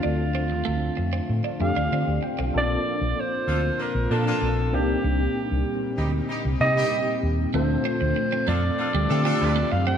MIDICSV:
0, 0, Header, 1, 8, 480
1, 0, Start_track
1, 0, Tempo, 625000
1, 30, Time_signature, 4, 2, 24, 8
1, 7662, End_track
2, 0, Start_track
2, 0, Title_t, "Alto saxophone"
2, 0, Program_c, 0, 65
2, 0, Note_on_c, 0, 65, 80
2, 1212, Note_off_c, 0, 65, 0
2, 1238, Note_on_c, 0, 77, 108
2, 1684, Note_off_c, 0, 77, 0
2, 1980, Note_on_c, 0, 74, 105
2, 2460, Note_on_c, 0, 72, 100
2, 2471, Note_off_c, 0, 74, 0
2, 2931, Note_on_c, 0, 70, 97
2, 2943, Note_off_c, 0, 72, 0
2, 3163, Note_on_c, 0, 69, 91
2, 3175, Note_off_c, 0, 70, 0
2, 3646, Note_on_c, 0, 67, 83
2, 3658, Note_off_c, 0, 69, 0
2, 4598, Note_off_c, 0, 67, 0
2, 5076, Note_on_c, 0, 75, 120
2, 5522, Note_off_c, 0, 75, 0
2, 5797, Note_on_c, 0, 72, 93
2, 6514, Note_on_c, 0, 74, 93
2, 6526, Note_off_c, 0, 72, 0
2, 7460, Note_on_c, 0, 77, 96
2, 7472, Note_off_c, 0, 74, 0
2, 7574, Note_off_c, 0, 77, 0
2, 7579, Note_on_c, 0, 79, 107
2, 7662, Note_off_c, 0, 79, 0
2, 7662, End_track
3, 0, Start_track
3, 0, Title_t, "Horn section"
3, 0, Program_c, 1, 61
3, 2664, Note_on_c, 1, 69, 83
3, 2665, Note_on_c, 1, 62, 74
3, 2667, Note_on_c, 1, 65, 76
3, 2769, Note_off_c, 1, 69, 0
3, 2770, Note_off_c, 1, 62, 0
3, 2771, Note_off_c, 1, 65, 0
3, 2905, Note_on_c, 1, 65, 89
3, 2906, Note_on_c, 1, 62, 77
3, 2908, Note_on_c, 1, 58, 76
3, 3010, Note_off_c, 1, 62, 0
3, 3010, Note_off_c, 1, 65, 0
3, 3011, Note_off_c, 1, 58, 0
3, 3147, Note_on_c, 1, 65, 85
3, 3148, Note_on_c, 1, 62, 78
3, 3153, Note_on_c, 1, 58, 80
3, 3251, Note_off_c, 1, 62, 0
3, 3251, Note_off_c, 1, 65, 0
3, 3254, Note_off_c, 1, 58, 0
3, 3272, Note_on_c, 1, 62, 93
3, 3275, Note_on_c, 1, 65, 99
3, 3277, Note_on_c, 1, 58, 93
3, 3425, Note_off_c, 1, 62, 0
3, 3427, Note_off_c, 1, 65, 0
3, 3428, Note_off_c, 1, 58, 0
3, 4582, Note_on_c, 1, 67, 90
3, 4583, Note_on_c, 1, 63, 77
3, 4587, Note_on_c, 1, 55, 76
3, 4687, Note_off_c, 1, 67, 0
3, 4688, Note_off_c, 1, 63, 0
3, 4690, Note_off_c, 1, 55, 0
3, 4825, Note_on_c, 1, 63, 81
3, 4828, Note_on_c, 1, 55, 81
3, 4830, Note_on_c, 1, 67, 95
3, 4929, Note_off_c, 1, 63, 0
3, 4931, Note_off_c, 1, 55, 0
3, 4932, Note_off_c, 1, 67, 0
3, 5064, Note_on_c, 1, 55, 80
3, 5068, Note_on_c, 1, 63, 81
3, 5069, Note_on_c, 1, 67, 86
3, 5169, Note_off_c, 1, 55, 0
3, 5171, Note_off_c, 1, 63, 0
3, 5172, Note_off_c, 1, 67, 0
3, 5189, Note_on_c, 1, 63, 94
3, 5190, Note_on_c, 1, 55, 96
3, 5190, Note_on_c, 1, 67, 113
3, 5343, Note_off_c, 1, 55, 0
3, 5343, Note_off_c, 1, 63, 0
3, 5343, Note_off_c, 1, 67, 0
3, 6504, Note_on_c, 1, 62, 78
3, 6504, Note_on_c, 1, 69, 85
3, 6506, Note_on_c, 1, 65, 78
3, 6608, Note_off_c, 1, 62, 0
3, 6608, Note_off_c, 1, 69, 0
3, 6609, Note_off_c, 1, 65, 0
3, 6741, Note_on_c, 1, 65, 81
3, 6742, Note_on_c, 1, 69, 85
3, 6745, Note_on_c, 1, 62, 85
3, 6846, Note_off_c, 1, 65, 0
3, 6847, Note_off_c, 1, 69, 0
3, 6849, Note_off_c, 1, 62, 0
3, 6981, Note_on_c, 1, 69, 98
3, 6983, Note_on_c, 1, 65, 80
3, 6984, Note_on_c, 1, 62, 81
3, 7086, Note_off_c, 1, 69, 0
3, 7087, Note_off_c, 1, 65, 0
3, 7088, Note_off_c, 1, 62, 0
3, 7100, Note_on_c, 1, 69, 111
3, 7101, Note_on_c, 1, 62, 108
3, 7101, Note_on_c, 1, 65, 99
3, 7308, Note_off_c, 1, 62, 0
3, 7308, Note_off_c, 1, 65, 0
3, 7308, Note_off_c, 1, 69, 0
3, 7662, End_track
4, 0, Start_track
4, 0, Title_t, "Tine electric piano"
4, 0, Program_c, 2, 4
4, 0, Control_c, 2, 64, 127
4, 0, Note_on_c, 2, 57, 66
4, 0, Note_on_c, 2, 60, 59
4, 0, Note_on_c, 2, 62, 64
4, 0, Note_on_c, 2, 65, 60
4, 0, Note_on_c, 2, 69, 68
4, 556, Note_off_c, 2, 57, 0
4, 558, Note_off_c, 2, 60, 0
4, 558, Note_off_c, 2, 62, 0
4, 558, Note_off_c, 2, 65, 0
4, 560, Note_off_c, 2, 69, 0
4, 1224, Note_on_c, 2, 57, 71
4, 1230, Note_on_c, 2, 60, 66
4, 1231, Note_on_c, 2, 62, 64
4, 1232, Note_on_c, 2, 65, 65
4, 1237, Note_on_c, 2, 67, 79
4, 1471, Note_off_c, 2, 65, 0
4, 1474, Note_off_c, 2, 67, 0
4, 1478, Note_on_c, 2, 74, 56
4, 1484, Note_on_c, 2, 65, 53
4, 1703, Note_off_c, 2, 74, 0
4, 1706, Note_off_c, 2, 65, 0
4, 1709, Note_on_c, 2, 79, 63
4, 1797, Note_off_c, 2, 57, 0
4, 1800, Note_off_c, 2, 60, 0
4, 1801, Note_off_c, 2, 62, 0
4, 1824, Note_off_c, 2, 79, 0
4, 1828, Note_on_c, 2, 77, 64
4, 1837, Note_on_c, 2, 69, 48
4, 1940, Note_off_c, 2, 69, 0
4, 1940, Note_on_c, 2, 58, 69
4, 1941, Note_on_c, 2, 60, 65
4, 1945, Note_on_c, 2, 61, 52
4, 1948, Note_on_c, 2, 65, 64
4, 1949, Note_on_c, 2, 69, 79
4, 1963, Control_c, 2, 64, 0
4, 1995, Note_on_c, 2, 62, 67
4, 1998, Note_off_c, 2, 61, 0
4, 2058, Note_off_c, 2, 77, 0
4, 2106, Control_c, 2, 64, 127
4, 2705, Note_off_c, 2, 58, 0
4, 2705, Note_off_c, 2, 60, 0
4, 2709, Note_off_c, 2, 65, 0
4, 2710, Note_off_c, 2, 69, 0
4, 2732, Note_off_c, 2, 62, 0
4, 3144, Note_on_c, 2, 58, 66
4, 3146, Note_on_c, 2, 60, 57
4, 3151, Note_on_c, 2, 62, 60
4, 3152, Note_on_c, 2, 65, 66
4, 3154, Note_on_c, 2, 69, 71
4, 3618, Note_off_c, 2, 60, 0
4, 3619, Note_off_c, 2, 58, 0
4, 3622, Note_off_c, 2, 62, 0
4, 3627, Note_on_c, 2, 60, 66
4, 3628, Note_on_c, 2, 58, 76
4, 3631, Note_off_c, 2, 65, 0
4, 3631, Note_on_c, 2, 62, 70
4, 3632, Note_off_c, 2, 69, 0
4, 3633, Note_on_c, 2, 63, 66
4, 3638, Note_on_c, 2, 67, 77
4, 3642, Control_c, 2, 64, 0
4, 3763, Control_c, 2, 64, 127
4, 4396, Note_off_c, 2, 60, 0
4, 4397, Note_off_c, 2, 58, 0
4, 4399, Note_off_c, 2, 62, 0
4, 4400, Note_off_c, 2, 63, 0
4, 4402, Note_off_c, 2, 67, 0
4, 5068, Note_on_c, 2, 58, 67
4, 5068, Note_on_c, 2, 60, 60
4, 5074, Note_on_c, 2, 63, 65
4, 5077, Note_on_c, 2, 67, 80
4, 5638, Note_off_c, 2, 58, 0
4, 5638, Note_off_c, 2, 60, 0
4, 5641, Note_off_c, 2, 63, 0
4, 5643, Note_off_c, 2, 67, 0
4, 5792, Note_on_c, 2, 57, 75
4, 5793, Note_on_c, 2, 60, 69
4, 5797, Note_on_c, 2, 65, 69
4, 5799, Note_on_c, 2, 62, 69
4, 5800, Control_c, 2, 64, 0
4, 5802, Note_on_c, 2, 69, 84
4, 5915, Control_c, 2, 64, 127
4, 6549, Note_off_c, 2, 57, 0
4, 6550, Note_off_c, 2, 60, 0
4, 6552, Note_off_c, 2, 62, 0
4, 6552, Note_off_c, 2, 65, 0
4, 6554, Note_off_c, 2, 69, 0
4, 6986, Note_on_c, 2, 57, 70
4, 6989, Note_on_c, 2, 60, 62
4, 6989, Note_on_c, 2, 62, 61
4, 6993, Note_on_c, 2, 65, 69
4, 6995, Note_on_c, 2, 67, 81
4, 7556, Note_off_c, 2, 57, 0
4, 7558, Note_off_c, 2, 60, 0
4, 7558, Note_off_c, 2, 62, 0
4, 7560, Note_off_c, 2, 65, 0
4, 7561, Note_off_c, 2, 67, 0
4, 7662, End_track
5, 0, Start_track
5, 0, Title_t, "Clean electric guitar"
5, 0, Program_c, 3, 27
5, 25, Note_on_c, 3, 62, 77
5, 122, Note_off_c, 3, 62, 0
5, 268, Note_on_c, 3, 60, 66
5, 364, Note_off_c, 3, 60, 0
5, 500, Note_on_c, 3, 57, 82
5, 599, Note_off_c, 3, 57, 0
5, 867, Note_on_c, 3, 60, 65
5, 963, Note_off_c, 3, 60, 0
5, 1108, Note_on_c, 3, 62, 57
5, 1204, Note_off_c, 3, 62, 0
5, 1356, Note_on_c, 3, 62, 69
5, 1449, Note_off_c, 3, 62, 0
5, 1482, Note_on_c, 3, 60, 85
5, 1573, Note_off_c, 3, 60, 0
5, 1833, Note_on_c, 3, 60, 64
5, 1927, Note_off_c, 3, 60, 0
5, 5791, Note_on_c, 3, 57, 80
5, 5885, Note_off_c, 3, 57, 0
5, 6031, Note_on_c, 3, 60, 80
5, 6125, Note_off_c, 3, 60, 0
5, 6393, Note_on_c, 3, 60, 74
5, 6486, Note_off_c, 3, 60, 0
5, 6511, Note_on_c, 3, 57, 86
5, 6605, Note_off_c, 3, 57, 0
5, 6871, Note_on_c, 3, 55, 82
5, 6965, Note_off_c, 3, 55, 0
5, 7106, Note_on_c, 3, 60, 80
5, 7202, Note_off_c, 3, 60, 0
5, 7340, Note_on_c, 3, 57, 85
5, 7438, Note_off_c, 3, 57, 0
5, 7579, Note_on_c, 3, 60, 74
5, 7662, Note_off_c, 3, 60, 0
5, 7662, End_track
6, 0, Start_track
6, 0, Title_t, "Analog synth pad"
6, 0, Program_c, 4, 89
6, 0, Note_on_c, 4, 50, 68
6, 0, Note_on_c, 4, 53, 65
6, 0, Note_on_c, 4, 57, 67
6, 0, Note_on_c, 4, 60, 63
6, 0, Note_on_c, 4, 65, 75
6, 1923, Note_off_c, 4, 50, 0
6, 1923, Note_off_c, 4, 53, 0
6, 1924, Note_off_c, 4, 65, 0
6, 1925, Note_off_c, 4, 60, 0
6, 1927, Note_off_c, 4, 57, 0
6, 1940, Note_on_c, 4, 46, 75
6, 1944, Note_on_c, 4, 65, 76
6, 1945, Note_on_c, 4, 53, 68
6, 1946, Note_on_c, 4, 58, 67
6, 3611, Note_off_c, 4, 53, 0
6, 3611, Note_off_c, 4, 65, 0
6, 3617, Note_on_c, 4, 67, 80
6, 3621, Note_on_c, 4, 60, 66
6, 3624, Note_on_c, 4, 55, 67
6, 5756, Note_off_c, 4, 58, 0
6, 5761, Note_off_c, 4, 67, 0
6, 5764, Note_off_c, 4, 55, 0
6, 5788, Note_on_c, 4, 53, 63
6, 5793, Note_on_c, 4, 65, 81
6, 5795, Note_on_c, 4, 57, 63
6, 7662, Note_off_c, 4, 46, 0
6, 7662, Note_off_c, 4, 53, 0
6, 7662, Note_off_c, 4, 57, 0
6, 7662, Note_off_c, 4, 60, 0
6, 7662, Note_off_c, 4, 65, 0
6, 7662, End_track
7, 0, Start_track
7, 0, Title_t, "Fingered electric bass"
7, 0, Program_c, 5, 33
7, 37, Note_on_c, 5, 38, 96
7, 396, Note_off_c, 5, 38, 0
7, 396, Note_on_c, 5, 39, 77
7, 476, Note_off_c, 5, 39, 0
7, 517, Note_on_c, 5, 38, 83
7, 680, Note_off_c, 5, 38, 0
7, 755, Note_on_c, 5, 41, 70
7, 918, Note_off_c, 5, 41, 0
7, 994, Note_on_c, 5, 45, 91
7, 1075, Note_off_c, 5, 45, 0
7, 1232, Note_on_c, 5, 41, 89
7, 1314, Note_off_c, 5, 41, 0
7, 1355, Note_on_c, 5, 38, 77
7, 1436, Note_off_c, 5, 38, 0
7, 1475, Note_on_c, 5, 50, 77
7, 1556, Note_off_c, 5, 50, 0
7, 1593, Note_on_c, 5, 38, 79
7, 1675, Note_off_c, 5, 38, 0
7, 1837, Note_on_c, 5, 35, 67
7, 1917, Note_off_c, 5, 35, 0
7, 1954, Note_on_c, 5, 34, 100
7, 2118, Note_off_c, 5, 34, 0
7, 2313, Note_on_c, 5, 34, 93
7, 2395, Note_off_c, 5, 34, 0
7, 2669, Note_on_c, 5, 38, 79
7, 2834, Note_off_c, 5, 38, 0
7, 3031, Note_on_c, 5, 34, 91
7, 3113, Note_off_c, 5, 34, 0
7, 3151, Note_on_c, 5, 46, 97
7, 3316, Note_off_c, 5, 46, 0
7, 3391, Note_on_c, 5, 34, 77
7, 3635, Note_off_c, 5, 34, 0
7, 3635, Note_on_c, 5, 36, 96
7, 3798, Note_off_c, 5, 36, 0
7, 3872, Note_on_c, 5, 36, 113
7, 4036, Note_off_c, 5, 36, 0
7, 4235, Note_on_c, 5, 36, 87
7, 4316, Note_off_c, 5, 36, 0
7, 4593, Note_on_c, 5, 38, 76
7, 4756, Note_off_c, 5, 38, 0
7, 4954, Note_on_c, 5, 36, 90
7, 5035, Note_off_c, 5, 36, 0
7, 5072, Note_on_c, 5, 48, 102
7, 5235, Note_off_c, 5, 48, 0
7, 5554, Note_on_c, 5, 39, 87
7, 5717, Note_off_c, 5, 39, 0
7, 5789, Note_on_c, 5, 38, 118
7, 5954, Note_off_c, 5, 38, 0
7, 6154, Note_on_c, 5, 38, 92
7, 6234, Note_off_c, 5, 38, 0
7, 6510, Note_on_c, 5, 41, 98
7, 6674, Note_off_c, 5, 41, 0
7, 6868, Note_on_c, 5, 38, 93
7, 6950, Note_off_c, 5, 38, 0
7, 6993, Note_on_c, 5, 50, 112
7, 7155, Note_off_c, 5, 50, 0
7, 7230, Note_on_c, 5, 38, 82
7, 7394, Note_off_c, 5, 38, 0
7, 7467, Note_on_c, 5, 42, 86
7, 7632, Note_off_c, 5, 42, 0
7, 7662, End_track
8, 0, Start_track
8, 0, Title_t, "Muted clean electric guitar strokes"
8, 382, Note_on_c, 9, 29, 42
8, 459, Note_off_c, 9, 29, 0
8, 746, Note_on_c, 9, 29, 42
8, 822, Note_off_c, 9, 29, 0
8, 1233, Note_on_c, 9, 29, 38
8, 1310, Note_off_c, 9, 29, 0
8, 1710, Note_on_c, 9, 29, 40
8, 1787, Note_off_c, 9, 29, 0
8, 6150, Note_on_c, 9, 29, 49
8, 6227, Note_off_c, 9, 29, 0
8, 6270, Note_on_c, 9, 29, 47
8, 6347, Note_off_c, 9, 29, 0
8, 6993, Note_on_c, 9, 29, 43
8, 7070, Note_off_c, 9, 29, 0
8, 7462, Note_on_c, 9, 29, 44
8, 7539, Note_off_c, 9, 29, 0
8, 7662, End_track
0, 0, End_of_file